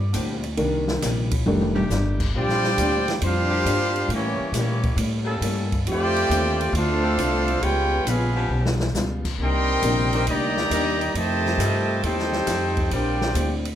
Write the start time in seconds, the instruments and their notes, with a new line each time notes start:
Already playing: upright bass G2, upright piano D5
0.13 upright bass D2, steel-string acoustic guitar A#2 G3 C4 D4, saxophone section D3 A#3 C4 G4, hi-hat pedal, ride
0.43 ride
0.57 upright bass C2, steel-string acoustic guitar C3 G3 A#3 D#4, upright piano D#3 A#3 D4, ride
0.88 snare
1.01 upright bass A#1, steel-string acoustic guitar C3 G3 A#3 D#4, snare, hi-hat pedal, ride
1.31 kick, ride
1.46 upright bass F1, steel-string acoustic guitar F2 D#3 A3 D4, upright piano D#3 G3 A3 D4, high tom
1.61 high tom
1.74 saxophone section D#3 A3 D4 G4, floor tom
1.90 upright bass G1, steel-string acoustic guitar F2 D#3 A3 D4, snare, hi-hat pedal
2.20 kick, crash
2.34 upright bass A#1, steel-string acoustic guitar A#2 G3 C4 D4, trombone section G3 D4 G4, trumpet section F4 C5 D5 G5
2.49 snare
2.64 snare
2.77 upright bass D2, steel-string acoustic guitar A#2 G3 C4 D4, hi-hat pedal, ride
3.08 snare, ride
3.21 upright bass F2, steel-string acoustic guitar A#2 G3 C4 D4, trombone section G3 D4 F4, trumpet section C5 F5, ride
3.25 trumpet section D4 G4
3.49 saxophone section D3 A#3 C4 G4
3.64 upright bass G2, steel-string acoustic guitar A#2 G3 C4 D4, hi-hat pedal, ride
3.96 ride
4.08 upright bass A2, steel-string acoustic guitar A2 G3 A#3 C#4, ride
4.12 trombone section E3 G3 C#4, trumpet section A#3 E4 G4 C#5
4.39 muted upright bass stroke
4.52 steel-string acoustic guitar A2 G3 A#3 C#4, upright bass A#2, trombone section E3 G3 C#4, snare, hi-hat pedal, ride
4.58 trumpet section A#3 E4 G4 C#5
4.83 kick, ride
4.96 upright bass A2, steel-string acoustic guitar A2 G3 A#3 C#4, ride
5.25 saxophone section G3 A#3 C#4 A4
5.41 upright bass G2, steel-string acoustic guitar A2 G3 A#3 C#4, hi-hat pedal, ride
5.72 kick, ride
5.85 upright bass F2, steel-string acoustic guitar D3 A3 C4 F4, trombone section A3 C4 G4, ride
5.90 trumpet section F4 C5 D5 G5
6.16 ride
6.29 upright bass D#2, steel-string acoustic guitar D3 A3 C4 F4, hi-hat pedal, ride
6.61 ride
6.73 upright bass D2, steel-string acoustic guitar D3 A3 C4 F4, trombone section A3 C4 F4, ride
6.77 trumpet section D4 A4 C5 F5
7.02 saxophone section F3 C4 D4 A4
7.17 upright bass C2, steel-string acoustic guitar D3 A3 C4 F4, hi-hat pedal, ride
7.48 ride
7.61 upright bass C#2, steel-string acoustic guitar C#3 G3 B3 F4, trombone section G#3 B3 G4, trumpet section F4 B4 C#5 G5, ride
8.05 upright bass A#1, steel-string acoustic guitar C#3 G3 B3 F4, trombone section G#3 B3 F4, trumpet section C#4 G#4 B4 F5, hi-hat pedal, ride
8.36 saxophone section F3 B3 C#4 G4
8.49 upright bass B1, steel-string acoustic guitar C#3 G3 B3 F4
8.65 snare
8.80 snare
8.94 upright bass C#2, steel-string acoustic guitar C#3 G3 B3 F4, snare, hi-hat pedal
9.25 kick, crash
9.38 upright bass C2, steel-string acoustic guitar C3 D#3 A#3 D4, trombone section D#3 G3 C4
9.43 trumpet section A#4 D#5 G5 C6
9.83 upright bass A#1, steel-string acoustic guitar C3 D#3 A#3 D4, hi-hat pedal, ride
10.13 saxophone section D#3 C4 D4 A#4, ride
10.26 upright bass D2, steel-string acoustic guitar C3 D#3 A#3 D4, trombone section G3 A#3 D#4, trumpet section G4 D5 D#5 A#5, ride
10.57 snare
10.70 upright bass D#2, steel-string acoustic guitar C3 D#3 A#3 D4, saxophone section D#3 C4 D4 A#4, hi-hat pedal, ride
11.01 ride
11.14 upright bass F2, trombone section C3 D#3 A3, steel-string acoustic guitar F3 A3 D#4 G4, trumpet section G4 C5 D#5 A5, ride
11.46 snare
11.58 upright bass G2, steel-string acoustic guitar F3 A3 D#4 G4, saxophone section G3 D#4 F4 A4, hi-hat pedal, ride
12.03 upright bass D#2, steel-string acoustic guitar F3 A3 D#4 G4, trombone section C4 D#4 G4, trumpet section D#4 A4 C5 G5, ride
12.19 snare
12.32 snare
12.47 upright bass F2, steel-string acoustic guitar F3 A3 D#4 G4, snare, hi-hat pedal, ride
12.77 kick, ride
12.91 upright bass A#1, steel-string acoustic guitar A#2 G3 C4 D4, saxophone section G3 C4 D4 A#4, trombone section G3 D4, trumpet section F4 C5 D5 G5, ride
13.21 snare
13.34 upright bass D2, steel-string acoustic guitar A#2 G3 C4 D4, hi-hat pedal, ride
13.65 ride